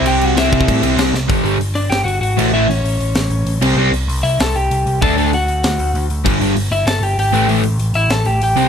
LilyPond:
<<
  \new Staff \with { instrumentName = "Lead electric guitar" } { \time 4/4 \key g \lydian \tempo 4 = 194 <g' g''>8 <fis' fis''>8 <e' e''>2 r4 | r4. <d' d''>8 <g' g''>8 <fis' fis''>8 <fis' fis''>4 | <e' e''>8 <cis' cis''>2. r8 | r4. <e' e''>8 <a' a''>8 <g' g''>4. |
<a' a''>4 <fis' fis''>2~ <fis' fis''>8 r8 | r4. <e' e''>8 <a' a''>8 <g' g''>8 <g' g''>4 | r4. <e' e''>8 <a' a''>8 <g' g''>8 <g' g''>4 | }
  \new Staff \with { instrumentName = "Overdriven electric guitar" } { \clef bass \time 4/4 \key g \lydian <c g c'>4 <c g c'>4. <c g c'>4 r8 | <g, d g>8 <g, d g>8 r2 r8 <a, e a>8 | <a, e a>8 r2. <c g c'>8 | <c g c'>8 r2. r8 |
<d a d'>8 <d a d'>8 r2. | <g, d g>8 <g, d g>8 r2 r8 <a, e a>8 | <a, e a>8 r2. <c g c'>8 | }
  \new Staff \with { instrumentName = "Picked electric bass" } { \clef bass \time 4/4 \key g \lydian c,4 c,8 c,8 a,8 c,8 c,8 c,8 | g,,8 g,,8 g,,8 g,,8 g,,8 g,,8 gis,,8 a,,8 | a,,8 a,,8 a,,8 a,,8 a,,8 a,,8 a,,8 c,8 | c,8 c,8 c,8 c,8 c,8 c,8 c,8 c,8 |
d,8 d,8 d,8 d,8 d,8 d,8 d,8 d,8 | g,,8 g,,8 g,,8 g,,8 g,,8 g,,8 gis,,8 a,,8 | a,,8 a,,8 a,,8 a,,8 a,,8 a,,8 a,,8 c,8 | }
  \new DrumStaff \with { instrumentName = "Drums" } \drummode { \time 4/4 cymc8 cymc8 <cymc sn>8 <cymc bd>16 bd16 <cymc bd>8 cymc8 <cymc sn>8 sn8 | <hho bd>8 hho8 hho8 hho8 <hho sn>8 hho8 hho8 cymc8 | r8 hho8 hho8 hho8 <hho sn>8 hho8 hho8 cymc8 | r8 hho8 hho8 hho8 <hho sn>8 hho8 hho8 hho8 |
<hho bd>8 hho8 hho8 hho8 <hho sn>8 hho8 hho8 hho8 | <cymc bd>8 hho8 hho8 hho8 <hho sn>8 hho8 hho8 hho8 | hho8 hho8 hho8 hho8 <hho sn>8 hho8 hho8 hho8 | }
>>